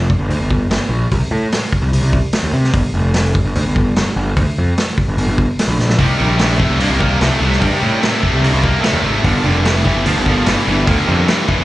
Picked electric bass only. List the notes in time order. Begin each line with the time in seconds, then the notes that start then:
0.19 G1
0.30 D2
0.39 G1
0.69 G1
0.89 A#1
1.12 C2
1.31 A2
1.82 C2
1.92 C2
2.02 C2
2.43 D#2
2.53 C3
2.73 G1
2.94 F1
3.44 G1
3.56 D2
3.66 G1
3.97 G1
4.16 G1
4.36 D2
4.58 F2
5.08 G1
5.18 G1
5.28 G1
5.68 A#1
5.79 A#1
5.98 C2
6.21 A#1
6.70 C2
6.80 G2
6.90 C2
7.21 C2
7.41 C2
7.61 G2
7.83 A2
8.33 C2
8.43 C2
8.54 C2
8.93 D#2
9.03 G#1
9.24 G1
9.44 F1
9.96 G1
10.06 D2
10.17 G1
10.47 G1
10.68 G1
10.87 D2
11.08 F2
11.60 G1